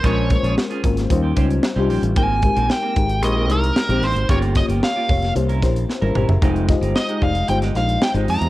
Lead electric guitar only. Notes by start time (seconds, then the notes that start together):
0.06 C#5
2.17 G#5
2.71 G5
3.24 D#5
3.51 A#4
4.04 C5
4.30 C#5
4.57 D#5
4.84 F5
6.96 D#5
7.23 F5
7.49 G5
7.76 F5
8.03 G5
8.30 A#5